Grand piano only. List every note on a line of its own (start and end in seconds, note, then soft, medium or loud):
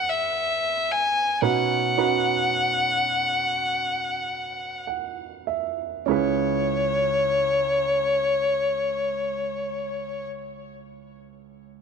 1.42 3.06 B2 soft
1.42 1.95 C#4 medium
1.42 1.95 D#4 soft
1.42 1.95 F#4 medium
1.42 1.95 B4 medium
1.98 4.15 C#4 soft
1.98 4.15 D#4 soft
1.98 4.15 F#4 medium
1.98 4.15 B4 medium
4.87 5.44 F#5 soft
5.47 6.05 E5 soft
6.06 10.23 C#2 medium
6.06 10.21 C#4 medium
6.06 10.22 E4 soft
6.06 10.24 G#4 soft
6.11 10.26 B4 medium